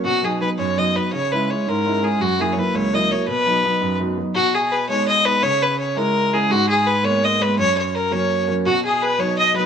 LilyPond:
<<
  \new Staff \with { instrumentName = "Accordion" } { \time 6/8 \key b \major \tempo 4. = 112 r2. | r2. | r2. | r2. |
r2. | r2. | r2. | r2. |
fis'8 gis'8 b'8 cis''8 dis''8 b'8 | }
  \new Staff \with { instrumentName = "Fiddle" } { \time 6/8 \key b \major fis'8 gis'8 b'8 cis''8 dis''8 b'8 | cis''8 b'8 cis''8 ais'4 gis'8 | fis'8 gis'16. cis''32 b'8 cis''8 dis''8 cis''8 | b'2 r4 |
fis'8 gis'8 b'8 cis''8 dis''8 b'8 | cis''8 b'8 cis''8 ais'4 gis'8 | fis'8 gis'8 b'8 cis''8 dis''8 b'8 | cis''8 cis''8 ais'8 cis''4~ cis''32 r16. |
fis'8 gis'8 b'8 cis''8 dis''8 b'16. r32 | }
  \new Staff \with { instrumentName = "Grand piano" } { \time 6/8 \key b \major b,8 <fis b dis'>8 <fis b dis'>8 fis,8 <fis b dis'>8 <fis b dis'>8 | cis8 <gis cis' e'>8 <gis cis' e'>8 gis,8 <gis cis' e'>8 <gis cis' e'>8 | fis,8 <fis ais e'>8 <fis ais e'>8 cis,8 <fis ais e'>8 <fis ais e'>8 | b,8 <fis b dis'>8 <fis b dis'>8 fis,8 <fis b dis'>8 <fis b dis'>8 |
b,4. <gis b dis'>4 <gis b dis'>8 | cis4. <gis cis' e'>4 <gis cis' e'>8 | gis,4. <gis ais b>4 <gis ais b>8 | fis,4. <fis ais cis'>4 <fis ais cis'>8 |
b,4. <fis b dis'>4 <fis b dis'>8 | }
>>